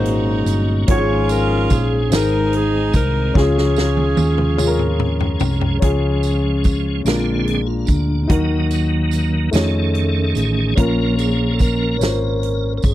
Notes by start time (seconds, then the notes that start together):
Already playing: G#1 A#2 F#3 G#3 A#3 C#4 D#4 F#4 G#4 A#4 C5
0.05 closed hi-hat
0.46 G1, closed hi-hat, tambourine
0.87 G#1 G#2 F3 G#3 C#4 F4 G#4 C#5, kick, closed hi-hat
0.91 F#4
0.98 G#4
1.29 A#4, closed hi-hat, tambourine
1.70 A#1 G#4, kick, closed hi-hat, tambourine
2.10 G#1 G#2 D#3 G#3 C4 D#4 G4 G#4, snare, closed hi-hat, tambourine
2.14 G#4 A#4
2.53 G#4, closed hi-hat
2.93 C2 A#4, kick, closed hi-hat, tambourine
3.33 C#2 C#3 F3 G#3 C#4 F4 G#4, kick, snare
3.39 G#4
3.58 snare
3.76 snare, tambourine
3.97 high tom
4.17 D#2, high tom, tambourine
4.38 mid tom
4.57 C#4 F4 G#4, mid tom, tambourine
4.67 A#4
4.79 mid tom
4.99 mid tom
5.20 floor tom
5.40 C2, floor tom, tambourine
5.61 floor tom
5.79 C#2 C#3 F3 G#3 C#4 F4 G#4, kick, closed hi-hat
6.23 closed hi-hat, tambourine
6.64 kick, closed hi-hat, tambourine
7.04 A#1 A#2 D3 G#3 A#3 C4 D4 F4 A#4, snare, closed hi-hat, tambourine
7.44 G#4, closed hi-hat
7.67 F4
7.87 D2 D4, kick, closed hi-hat, tambourine
8.23 D4
8.28 D#2 D#3 F#3 A#3 D#4 F#4 A#4, kick, closed hi-hat
8.71 closed hi-hat, tambourine
9.11 closed hi-hat, tambourine
9.51 F2 D#3 A3 C#4 D#4 F4 G#4 A4 C#5, closed hi-hat, tambourine
9.56 snare
9.95 closed hi-hat
10.35 A1 G#4, closed hi-hat, tambourine
10.75 A#1 A#2 F3 A#3 C#4 F4 A#4, kick, closed hi-hat
11.19 G#4, closed hi-hat, tambourine
11.53 A4
11.59 A#4, kick, closed hi-hat, tambourine
11.99 G#1 C#4 F4 C5, closed hi-hat, tambourine
12.03 snare
12.43 closed hi-hat
12.78 A#4
12.82 G1 G#4, kick, closed hi-hat, tambourine